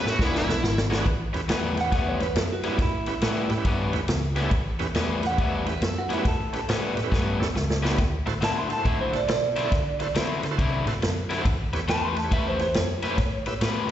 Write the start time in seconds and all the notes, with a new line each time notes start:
0.03 A2 G4 A4, muted overdriven electric guitar stroke, snare
0.10 C#4 E4 F#4 G4 B4
0.19 E1 E3 G#3 D4 E4 F#4, kick, snare
0.35 E4, snare
0.47 B1 D4 F#4 G#4 B4, muted overdriven electric guitar stroke, snare
0.63 G#1, muted overdriven electric guitar stroke, snare
0.78 snare
0.90 E3 G#3 D4 F#4 G#4 C#5, snare
0.97 D4 F#4 G#4 B4
1.06 A1, muted overdriven electric guitar stroke, kick, ride
1.33 E2 C#4 E4 G4 B4, muted overdriven electric guitar stroke, snare, ride
1.48 E2 A2 G3 B3 C#4, snare, ride
1.76 G4 B4, muted overdriven electric guitar stroke, snare, ride
1.81 C#4 E4 G4 B4 F#5
1.91 E2 A2 G3 B3 C#4, kick, snare, ride
1.96 E5
2.09 C#5
2.20 C#4 E4 G4 B4, muted overdriven electric guitar stroke, snare, ride
2.35 F#2 A4, muted overdriven electric guitar stroke, snare, ride
2.52 F#4
2.63 A2 G3 B3 C#4 E4 G4 B4, snare, ride
2.71 C#4 E4 G4 B4
2.78 A2 E4, muted overdriven electric guitar stroke, kick, snare, ride
3.06 C#4 E4 G4 B4, muted overdriven electric guitar stroke, snare, ride
3.22 A2 G3 B3 C#4, snare, ride
3.50 A2 G4 B4, muted overdriven electric guitar stroke, snare, ride
3.57 C#4 E4 G4 B4
3.65 G2 A2 G3 B3 C#4, kick, ride
3.92 E2 C#4 E4 G4 B4, muted overdriven electric guitar stroke, snare, ride
4.08 C#2, muted overdriven electric guitar stroke, snare, ride
4.35 A2 G3 B3 C#4 G4 B4, snare, ride
4.43 C#4 E4 G4 A4
4.51 A1, muted overdriven electric guitar stroke, kick, ride
4.79 E2 C#4 E4 G4 B4, muted overdriven electric guitar stroke, snare, ride
4.95 E2 A2 G3 B3 C#4, snare, ride
5.22 G4 B4, muted overdriven electric guitar stroke, snare, ride
5.27 C#4 E4 G4 B4 F#5
5.38 A2 G3 B3 C#4 E5, kick, ride
5.55 C#5
5.66 C#4 E4 G4 B4, muted overdriven electric guitar stroke, snare, ride
5.82 F#2 A4, muted overdriven electric guitar stroke, snare, ride
5.98 F#4
6.09 A2 G3 B3 C#4 E4 G4 B4, snare, ride
6.17 C#4 E4 G4 B4
6.25 A2 A4, muted overdriven electric guitar stroke, kick, snare, ride
6.53 C#4 E4 G4 B4, muted overdriven electric guitar stroke, snare, ride
6.69 A2 G3 B3 C#4, snare, ride
6.96 A2 G4 B4, muted overdriven electric guitar stroke, snare, ride
7.04 C#4 E4 G4 B4
7.11 G2 A2 G3 B3 C#4, kick, snare
7.39 E2 C#4 E4 G4 A4, muted overdriven electric guitar stroke, snare
7.55 C#2, muted overdriven electric guitar stroke, snare
7.70 snare
7.83 A2 G3 B3 C#4 G4 B4, snare
7.90 C#4 E4 G4 B4
7.98 D2, muted overdriven electric guitar stroke, kick, snare, ride
8.26 A2 E4 F#4 A4 C5, muted overdriven electric guitar stroke, snare, ride
8.41 A2 D3 F#3 C4 E4 A5, snare, ride
8.59 C6
8.69 A4 C5 A5, muted overdriven electric guitar stroke, snare, ride
8.77 E4 F#4 A4 C5
8.85 A2 D3 F#3 C4 E4 E5, kick, ride
9.01 C5
9.13 E4 F#4 A4 C5 D5, muted overdriven electric guitar stroke, snare, ride
9.28 B2 D5, muted overdriven electric guitar stroke, snare, ride
9.56 D3 F#3 C4 E4 A4 C5, snare, ride
9.64 E4 F#4 A4 D5
9.72 D3, muted overdriven electric guitar stroke, kick, snare, ride
10.00 E4 F#4 A4 C5, muted overdriven electric guitar stroke, snare, ride
10.15 D3 F#3 C4 E4, snare, ride
10.43 D3 A4 C5, muted overdriven electric guitar stroke, snare, ride
10.51 E4 F#4 A4 C5
10.58 C3 D3 F#3 C4 E4, kick, ride
10.86 A2 E4 F#4 A4 C5, muted overdriven electric guitar stroke, snare, ride
11.01 F#2, muted overdriven electric guitar stroke, snare, ride
11.30 D3 F#3 C4 E4 A4 B4, snare, ride
11.38 E4 F#4 A4 C5
11.45 A1, muted overdriven electric guitar stroke, kick, ride
11.73 E2 E4 G4 B4 C#5, muted overdriven electric guitar stroke, snare, ride
11.88 E2 A3 C#4 G4 B4 A5, snare, ride
12.05 C6
12.15 B4 E5 A5, muted overdriven electric guitar stroke, snare, ride
12.24 E4 G4 B4 C#5
12.31 E2 A3 C#4 G4 B4 E5, kick, ride
12.48 C5
12.59 E4 G4 B4 C5 C#5, muted overdriven electric guitar stroke, snare, ride
12.74 F#2 C#5, muted overdriven electric guitar stroke, snare, ride
13.02 A3 C#4 G4 B4 E5, snare, ride
13.10 E4 G4 B4 C#5
13.18 A2, muted overdriven electric guitar stroke, kick, snare, ride
13.46 E4 G4 B4 E5, muted overdriven electric guitar stroke, snare, ride
13.61 A2 A3 C#4 G4 B4, snare, ride